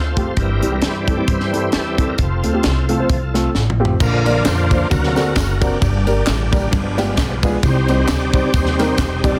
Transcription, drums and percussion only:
0.17 kick, closed hi-hat
0.37 kick, closed hi-hat
0.62 closed hi-hat
0.82 snare, closed hi-hat
1.08 kick, closed hi-hat
1.28 kick, closed hi-hat
1.40 snare
1.54 closed hi-hat
1.72 snare, closed hi-hat
1.98 kick, closed hi-hat
2.18 kick, closed hi-hat
2.44 closed hi-hat
2.63 snare, closed hi-hat
2.89 closed hi-hat
3.09 kick, closed hi-hat
3.34 snare, closed hi-hat
3.55 snare
3.70 mid tom
3.85 floor tom
4.00 kick, crash, tambourine
4.26 ride, tambourine
4.45 snare, clap, ride, tambourine
4.71 kick, ride, tambourine
4.91 kick, ride, tambourine
5.04 snare
5.16 snare, ride, tambourine
5.36 kick, snare, clap, ride, tambourine
5.62 kick, ride, tambourine
5.82 kick, ride, tambourine
6.07 ride, tambourine
6.26 snare, clap, ride, tambourine
6.53 kick, ride, tambourine
6.72 kick, ride, tambourine
6.98 snare, ride, tambourine
7.17 kick, snare, clap, ride, tambourine
7.43 kick, ride, tambourine
7.63 kick, ride, tambourine
7.88 ride, tambourine
8.08 snare, clap, ride, tambourine
8.33 kick, ride, tambourine
8.54 kick, ride, tambourine
8.66 snare
8.79 snare, ride, tambourine
8.98 kick, snare, clap, ride, tambourine
9.24 kick, ride, tambourine

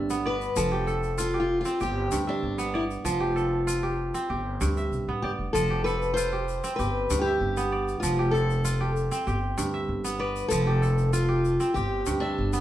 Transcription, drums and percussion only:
0.10 shaker
0.41 shaker
0.56 shaker
0.88 shaker
1.03 shaker
1.18 shaker
1.65 shaker
1.80 shaker
2.11 shaker
2.59 shaker
2.91 shaker
3.06 shaker
3.37 shaker
3.68 shaker
4.15 shaker
4.61 shaker
4.77 shaker
4.93 shaker
5.55 shaker
5.86 shaker
6.02 shaker
6.17 shaker
6.48 shaker
6.64 shaker
6.79 shaker
7.10 shaker
7.57 shaker
7.88 shaker
8.03 shaker
8.34 shaker
8.50 shaker
8.65 shaker
8.96 shaker
9.12 shaker
9.27 shaker
9.58 shaker
10.05 shaker
10.36 shaker
10.50 shaker
10.83 shaker
10.98 shaker
11.13 shaker
11.45 shaker
11.60 shaker
11.76 shaker
12.06 shaker
12.53 shaker

